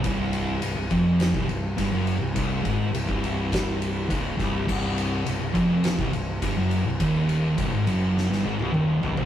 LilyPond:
<<
  \new Staff \with { instrumentName = "Distorted electric guitar" } { \clef bass \time 4/4 \key c \minor \tempo 4 = 104 c,4 c,16 c,16 f,8. c,16 c,8 g,16 fis,8 c,16 | c,8 aes,8 c,16 c,4.~ c,16 des,8 c,8 | c,4 c,16 c,16 f,8. c,16 c,8 g,16 fis,8 c,16 | ees,4 c,16 aes,16 fis,8. g,16 aes,16 c,16 ees,8 des,16 c,16 | }
  \new Staff \with { instrumentName = "Picked electric bass" } { \clef bass \time 4/4 \key c \minor c,,4 c,,16 c,,16 f,,8. c,,16 c,,8 g,,16 fis,,8 c,,16 | c,,8 aes,,8 c,,16 c,,4.~ c,,16 des,,8 c,,8 | c,,4 c,,16 c,,16 f,,8. c,,16 c,,8 g,,16 fis,,8 c,,16 | ees,,4 c,,16 aes,,16 fis,,8. g,,16 aes,,16 c,,16 ees,,8 des,,16 c,,16 | }
  \new DrumStaff \with { instrumentName = "Drums" } \drummode { \time 4/4 <bd cymr>8 cymr8 cymr8 <bd cymr>8 <cymr sn>16 bd16 cymr8 <bd cymr>8 cymr8 | <bd cymr>8 <bd cymr>8 cymr16 bd16 cymr8 <bd cymr sn>8 cymr8 <bd cymr>8 <bd cymr sn>8 | <cymc bd>8 cymr8 cymr8 <bd cymr>8 <cymr sn>16 bd16 cymr8 <bd cymr>8 cymr8 | <bd cymr>8 cymr8 <bd cymr>8 cymr8 sn16 sn8 tommh16 toml8 tomfh16 tomfh16 | }
>>